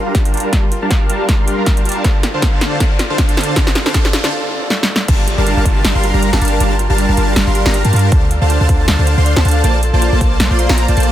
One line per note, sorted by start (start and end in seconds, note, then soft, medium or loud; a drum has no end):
0.00 0.14 F4 medium
0.00 0.44 A#4 medium
0.00 0.67 D5 medium
0.00 riser medium
0.06 0.22 G3 medium
0.06 0.22 D4 medium
0.06 0.25 G4 medium
0.06 0.22 A#4 medium
0.06 0.22 F5 medium
0.06 0.22 A#5 loud
0.15 kick loud
0.15 snare medium
0.15 closed hi-hat medium
0.25 0.32 G3 medium
0.25 0.32 D4 medium
0.25 0.33 G4 medium
0.25 0.32 A#4 medium
0.25 0.32 F5 medium
0.25 0.32 A5 medium
0.25 closed hi-hat medium
0.34 0.51 G3 medium
0.34 0.51 D4 medium
0.34 0.63 G4 medium
0.34 0.51 A#4 medium
0.34 0.51 F5 medium
0.34 0.51 A5 medium
0.34 closed hi-hat soft
0.37 closed hi-hat medium
0.40 closed hi-hat medium
0.44 1.01 A#4 medium
0.53 0.64 G3 medium
0.53 0.64 D4 medium
0.53 0.64 A#4 medium
0.53 0.64 F5 medium
0.53 0.64 A5 loud
0.53 kick loud
0.53 snare medium
0.53 closed hi-hat medium
0.63 0.82 G4 medium
0.72 1.09 F4 medium
0.72 closed hi-hat medium
0.82 0.99 G3 medium
0.82 0.99 D4 medium
0.82 0.90 G4 medium
0.82 0.99 A#4 medium
0.82 0.99 F5 medium
0.82 0.99 A5 medium
0.91 1.20 G4 medium
0.91 kick loud
0.91 snare medium
0.91 closed hi-hat medium
1.01 1.08 G3 medium
1.01 1.08 D4 medium
1.01 1.08 A#4 medium
1.01 1.58 A#4 medium
1.01 1.08 F5 medium
1.01 1.08 A5 loud
1.10 1.27 G3 loud
1.10 1.27 D4 medium
1.10 1.28 F4 loud
1.10 1.27 A#4 medium
1.10 1.27 F5 medium
1.10 1.27 A5 loud
1.10 closed hi-hat medium
1.20 1.39 G4 medium
1.29 1.37 G3 medium
1.29 1.37 D4 medium
1.29 1.37 A#4 medium
1.29 1.37 F5 medium
1.29 1.37 A5 medium
1.29 kick loud
1.29 snare medium
1.29 closed hi-hat medium
1.39 1.56 G3 medium
1.39 1.56 D4 medium
1.39 1.47 G4 medium
1.39 1.56 A#4 medium
1.39 1.56 F5 medium
1.39 1.56 C6 medium
1.48 1.77 G4 medium
1.48 closed hi-hat medium
1.58 1.74 G3 medium
1.58 1.74 D4 medium
1.58 2.10 A#4 medium
1.58 1.74 A#4 medium
1.58 1.74 F5 medium
1.58 1.74 A#5 loud
1.66 1.85 F4 loud
1.66 kick loud
1.66 snare medium
1.66 closed hi-hat medium
1.77 1.83 G3 medium
1.77 1.83 D4 medium
1.77 1.96 G4 medium
1.77 1.83 A#4 medium
1.77 1.83 F5 medium
1.77 1.83 A5 medium
1.77 closed hi-hat medium
1.85 2.02 G3 medium
1.85 2.02 D4 medium
1.85 2.23 F4 medium
1.85 2.02 A#4 medium
1.85 2.02 F5 medium
1.85 2.02 A5 loud
1.85 closed hi-hat soft
1.89 closed hi-hat medium
1.92 closed hi-hat medium
1.96 4.31 G4 medium
2.04 2.16 D3 medium
2.04 2.16 D4 medium
2.04 2.33 A4 medium
2.04 2.16 C5 medium
2.04 2.16 F5 medium
2.04 2.16 A5 loud
2.04 kick loud
2.04 snare medium
2.04 closed hi-hat medium
2.15 2.71 D5 medium
2.23 2.42 F4 medium
2.23 snare medium
2.23 closed hi-hat medium
2.34 2.50 D3 medium
2.34 2.50 D4 medium
2.34 2.52 A4 medium
2.34 2.51 C5 medium
2.34 2.50 F5 medium
2.34 2.50 A5 medium
2.42 2.99 F4 medium
2.42 kick medium
2.42 snare medium
2.42 closed hi-hat medium
2.53 2.60 D3 medium
2.53 2.60 D4 medium
2.53 2.61 A4 medium
2.53 2.60 C5 medium
2.53 2.60 F5 medium
2.53 2.60 A5 loud
2.61 2.78 D3 medium
2.61 2.78 D4 medium
2.61 2.80 A4 medium
2.61 2.78 C5 medium
2.61 2.78 F5 medium
2.61 2.78 A5 loud
2.61 snare medium
2.61 closed hi-hat medium
2.72 2.90 D5 medium
2.80 2.92 D3 medium
2.80 2.92 D4 medium
2.80 3.09 A4 medium
2.80 2.92 C5 medium
2.80 2.92 F5 medium
2.80 2.92 A5 loud
2.80 kick loud
2.80 snare medium
2.80 closed hi-hat medium
2.91 3.47 D5 medium
2.99 3.18 F4 loud
2.99 snare medium
2.99 closed hi-hat medium
3.10 3.26 D3 medium
3.10 3.26 D4 medium
3.10 3.28 A4 medium
3.10 3.26 C5 medium
3.10 3.26 F5 medium
3.10 3.26 A5 medium
3.18 kick loud
3.18 snare medium
3.18 closed hi-hat medium
3.29 3.36 D3 medium
3.29 3.36 D4 medium
3.29 3.37 A4 medium
3.29 3.36 C5 medium
3.29 3.36 F5 medium
3.29 3.36 A5 loud
3.29 closed hi-hat medium
3.37 3.54 D3 loud
3.37 3.54 D4 medium
3.37 3.56 A4 medium
3.37 3.54 C5 medium
3.37 3.54 F5 medium
3.37 3.54 A5 loud
3.37 snare medium
3.37 closed hi-hat soft
3.41 closed hi-hat medium
3.44 closed hi-hat medium
3.48 3.66 D5 medium
3.56 3.68 D3 medium
3.56 3.68 D4 medium
3.56 3.68 C5 medium
3.56 3.68 F5 medium
3.56 3.68 A5 loud
3.56 kick loud
3.56 snare medium
3.56 closed hi-hat medium
3.67 4.05 D5 medium
3.67 snare medium
3.75 4.13 F4 medium
3.75 snare medium
3.75 closed hi-hat medium
3.86 3.93 D3 medium
3.86 3.93 D4 medium
3.86 3.94 A4 medium
3.86 3.93 C5 medium
3.86 3.93 F5 medium
3.86 3.93 A5 medium
3.86 snare medium
3.94 4.06 D3 medium
3.94 4.06 D4 medium
3.94 4.24 A4 medium
3.94 4.06 C5 medium
3.94 4.06 F5 medium
3.94 4.06 A5 loud
3.94 kick loud
3.94 snare loud
3.94 closed hi-hat medium
4.05 4.42 D5 medium
4.05 snare medium
4.13 5.08 F4 loud
4.13 snare loud
4.13 closed hi-hat medium
4.24 4.31 D3 medium
4.24 4.31 D4 medium
4.24 4.32 A4 medium
4.24 4.31 C5 medium
4.24 4.31 F5 medium
4.24 4.31 A5 loud
4.24 snare medium
4.32 4.51 A4 medium
4.43 4.61 D5 medium
4.51 4.70 A4 medium
4.62 4.81 D5 medium
4.70 4.89 A4 medium
4.70 snare medium
4.81 5.00 D5 medium
4.81 snare medium
4.89 5.44 A4 medium
4.96 snare medium
5.00 6.85 D5 medium
5.08 5.36 G1 loud
5.08 5.20 G3 medium
5.08 5.20 D4 medium
5.08 5.46 F4 medium
5.08 5.20 A#4 medium
5.08 5.20 F5 medium
5.08 5.20 A5 loud
5.08 kick loud
5.08 closed hi-hat medium
5.08 crash loud
5.08 downlifter medium
5.19 5.27 G4 medium
5.27 5.57 G4 medium
5.27 closed hi-hat medium
5.38 5.55 G1 loud
5.38 5.54 G3 medium
5.38 5.54 D4 medium
5.38 5.94 A#4 medium
5.38 5.54 A#4 medium
5.38 5.54 F5 medium
5.38 5.54 A5 medium
5.46 5.65 F4 loud
5.46 closed hi-hat medium
5.57 5.64 G1 loud
5.57 5.64 G3 medium
5.57 5.64 D4 medium
5.57 5.76 G4 medium
5.57 5.64 A#4 medium
5.57 5.64 F5 medium
5.57 5.64 A5 loud
5.65 5.83 G1 loud
5.65 5.82 G3 medium
5.65 5.82 D4 medium
5.65 6.03 F4 medium
5.65 5.82 A#4 medium
5.65 5.82 F5 medium
5.65 5.82 A5 loud
5.65 kick medium
5.65 closed hi-hat medium
5.76 5.84 G4 medium
5.84 5.93 G1 loud
5.84 5.92 G3 medium
5.84 5.92 D4 medium
5.84 6.14 G4 medium
5.84 5.92 A#4 medium
5.84 5.92 F5 medium
5.84 5.92 A5 medium
5.84 snare loud
5.84 closed hi-hat medium
5.95 6.12 G1 loud
5.95 6.11 G3 medium
5.95 6.11 D4 medium
5.95 6.52 A#4 medium
5.95 6.11 A#4 medium
5.95 6.11 F5 medium
5.95 6.11 C6 medium
6.03 6.22 F4 loud
6.03 closed hi-hat medium
6.14 6.31 G1 loud
6.14 6.30 G3 loud
6.14 6.30 D4 medium
6.14 6.33 G4 medium
6.14 6.30 A#4 medium
6.14 6.30 F5 medium
6.14 6.30 A#5 loud
6.22 6.60 F4 medium
6.22 closed hi-hat medium
6.33 6.40 G1 loud
6.33 6.39 G3 medium
6.33 6.39 D4 medium
6.33 6.41 G4 medium
6.33 6.39 A#4 medium
6.33 6.39 F5 medium
6.33 6.39 A5 medium
6.33 snare medium
6.33 closed hi-hat medium
6.41 6.59 G1 medium
6.41 6.58 G3 medium
6.41 6.58 D4 medium
6.41 6.71 G4 medium
6.41 6.58 A#4 medium
6.41 6.58 F5 medium
6.41 6.58 A5 loud
6.41 6.58 A5 medium
6.41 closed hi-hat medium
6.45 closed hi-hat medium
6.48 closed hi-hat medium
6.52 7.08 A#4 medium
6.60 6.88 G1 loud
6.60 6.72 G3 loud
6.60 6.72 D4 medium
6.60 6.79 F4 loud
6.60 6.72 A#4 medium
6.60 6.72 F5 medium
6.60 6.72 A5 loud
6.60 closed hi-hat medium
6.71 6.90 G4 medium
6.79 7.17 F4 medium
6.79 closed hi-hat medium
6.90 7.07 G1 loud
6.90 7.06 G3 medium
6.90 7.06 D4 medium
6.90 6.98 G4 medium
6.90 7.06 A#4 medium
6.90 7.06 F5 medium
6.90 7.06 A5 medium
6.90 7.06 A5 loud
6.98 7.27 G4 medium
6.98 closed hi-hat medium
7.09 7.16 G1 loud
7.09 7.16 G3 medium
7.09 7.16 D4 medium
7.09 7.16 A#4 medium
7.09 7.65 A#4 medium
7.09 7.16 F5 medium
7.09 7.16 A5 loud
7.17 7.35 G1 loud
7.17 7.34 G3 medium
7.17 7.34 D4 medium
7.17 7.36 F4 loud
7.17 7.34 A#4 medium
7.17 7.34 F5 medium
7.17 7.34 A5 loud
7.17 closed hi-hat medium
7.28 7.46 G4 medium
7.36 7.45 G1 medium
7.36 7.44 G3 medium
7.36 7.44 D4 medium
7.36 7.74 F4 medium
7.36 7.44 A#4 medium
7.36 7.44 F5 medium
7.36 7.44 A5 medium
7.36 snare loud
7.36 closed hi-hat medium
7.47 7.64 G1 loud
7.47 7.63 G3 medium
7.47 7.63 D4 medium
7.47 7.55 G4 medium
7.47 7.63 A#4 medium
7.47 7.63 F5 medium
7.47 7.63 C6 medium
7.55 7.84 G4 medium
7.55 closed hi-hat medium
7.66 7.83 G1 loud
7.66 7.82 G3 loud
7.66 7.82 D4 medium
7.66 7.82 A#4 medium
7.66 8.18 A#4 medium
7.66 7.82 F5 medium
7.66 7.81 A#5 loud
7.66 7.82 A#5 loud
7.66 snare medium
7.74 7.93 F4 loud
7.74 closed hi-hat medium
7.85 7.92 G2 loud
7.85 7.91 G3 medium
7.85 7.91 D4 medium
7.85 8.03 G4 medium
7.85 7.91 A#4 medium
7.85 7.91 F5 medium
7.85 7.91 A5 medium
7.85 closed hi-hat medium
7.93 8.11 G2 medium
7.93 8.10 G3 medium
7.93 8.10 D4 medium
7.93 8.31 F4 medium
7.93 8.10 A#4 medium
7.93 8.10 F5 medium
7.93 8.10 A5 loud
7.93 8.10 A5 medium
7.93 closed hi-hat soft
7.96 closed hi-hat medium
7.99 closed hi-hat medium
8.04 10.39 G4 medium
8.12 8.40 D2 loud
8.12 8.23 D3 medium
8.12 8.23 D4 medium
8.12 8.41 A4 medium
8.12 8.23 C5 medium
8.12 8.23 F5 medium
8.12 8.23 A5 loud
8.12 8.24 A5 loud
8.12 kick loud
8.12 closed hi-hat medium
8.23 8.79 D5 medium
8.31 8.50 F4 loud
8.31 closed hi-hat medium
8.42 8.59 D2 loud
8.42 8.58 D3 medium
8.42 8.58 D4 medium
8.42 8.60 A4 medium
8.42 8.58 C5 medium
8.42 8.58 F5 medium
8.42 8.58 A5 medium
8.50 8.88 F4 medium
8.50 closed hi-hat medium
8.61 8.67 D2 medium
8.61 8.68 D3 loud
8.61 8.68 D4 medium
8.61 8.69 A4 medium
8.61 8.68 C5 medium
8.61 8.68 F5 medium
8.61 8.68 A5 loud
8.69 8.86 D2 loud
8.69 8.86 D3 loud
8.69 8.86 D4 medium
8.69 8.98 A4 medium
8.69 8.86 C5 medium
8.69 8.86 F5 medium
8.69 8.86 A5 loud
8.69 kick medium
8.69 closed hi-hat medium
8.80 9.36 D5 medium
8.88 8.97 D2 loud
8.88 8.96 D3 medium
8.88 8.96 D4 medium
8.88 9.06 F4 loud
8.88 8.96 C5 medium
8.88 8.96 F5 medium
8.88 8.96 A5 medium
8.88 snare loud
8.88 closed hi-hat medium
8.99 9.16 D2 loud
8.99 9.15 D3 medium
8.99 9.15 D4 medium
8.99 9.17 A4 medium
8.99 9.15 C5 medium
8.99 9.15 F5 medium
8.99 9.15 A5 medium
9.07 9.44 F4 medium
9.07 closed hi-hat medium
9.17 9.35 D2 loud
9.17 9.33 D3 loud
9.17 9.33 D4 medium
9.17 9.25 A4 medium
9.17 9.33 C5 medium
9.17 9.33 F5 medium
9.17 9.33 C6 loud
9.26 9.55 A4 medium
9.26 closed hi-hat medium
9.37 9.43 D2 medium
9.37 9.43 D3 medium
9.37 9.43 D4 medium
9.37 9.43 C5 medium
9.37 11.12 D5 medium
9.37 9.43 F5 medium
9.37 9.43 A5 medium
9.37 snare medium
9.37 closed hi-hat medium
9.45 9.62 D2 medium
9.45 9.62 D3 medium
9.45 9.62 D4 medium
9.45 9.63 F4 loud
9.45 9.62 C5 medium
9.45 9.62 F5 medium
9.45 9.62 A5 medium
9.45 9.62 A5 loud
9.45 closed hi-hat soft
9.49 closed hi-hat medium
9.51 closed hi-hat medium
9.56 9.74 A4 medium
9.64 9.91 A#1 loud
9.64 9.75 A#3 medium
9.64 10.02 F4 medium
9.64 9.75 F4 medium
9.64 9.75 C5 medium
9.64 9.75 D5 medium
9.64 9.75 A5 loud
9.64 closed hi-hat medium
9.75 9.83 A4 medium
9.83 10.12 A4 medium
9.83 closed hi-hat medium
9.93 10.10 A#1 loud
9.93 10.10 A#3 medium
9.93 10.10 F4 medium
9.93 10.10 C5 medium
9.93 10.50 C5 medium
9.93 10.10 D5 medium
9.93 10.10 A5 loud
9.93 10.10 A5 medium
10.02 10.20 F4 loud
10.02 closed hi-hat medium
10.12 10.19 A#1 loud
10.12 10.20 A#3 loud
10.12 10.20 F4 medium
10.12 10.31 A4 medium
10.12 10.20 C5 medium
10.12 10.20 D5 medium
10.12 10.20 A5 loud
10.21 10.38 A#3 loud
10.21 11.07 F4 medium
10.21 10.38 F4 medium
10.21 10.38 C5 loud
10.21 10.38 D5 medium
10.21 10.38 A5 loud
10.21 kick medium
10.21 closed hi-hat medium
10.31 10.39 A4 medium
10.40 10.48 A#1 loud
10.40 10.48 A#3 medium
10.40 10.48 F4 medium
10.40 10.96 A4 medium
10.40 10.48 C5 medium
10.40 10.48 D5 medium
10.40 10.48 A5 medium
10.40 snare loud
10.40 closed hi-hat medium
10.50 10.67 A#1 loud
10.50 10.67 A#3 medium
10.50 10.67 F4 medium
10.50 10.69 C5 medium
10.50 10.67 C5 medium
10.50 10.67 D5 medium
10.50 10.67 C6 medium
10.59 11.12 F5 medium
10.59 closed hi-hat medium
10.69 10.87 A#1 loud
10.69 10.85 A#3 loud
10.69 10.85 F4 medium
10.69 10.85 C5 medium
10.69 10.85 D5 medium
10.69 10.85 A#5 loud
10.69 snare medium
10.78 10.88 C5 medium
10.78 closed hi-hat medium
10.88 10.95 A#1 loud
10.88 10.95 A#3 medium
10.88 10.95 F4 medium
10.88 11.12 C5 medium
10.88 10.95 C5 medium
10.88 10.95 D5 medium
10.88 10.95 A5 medium
10.88 closed hi-hat medium
10.97 11.12 A#1 loud
10.97 11.12 A#3 medium
10.97 11.12 F4 medium
10.97 11.12 A4 medium
10.97 11.12 C5 medium
10.97 11.12 D5 medium
10.97 11.12 A5 loud
10.97 closed hi-hat soft
11.00 closed hi-hat medium
11.03 closed hi-hat medium
11.07 11.12 F4 medium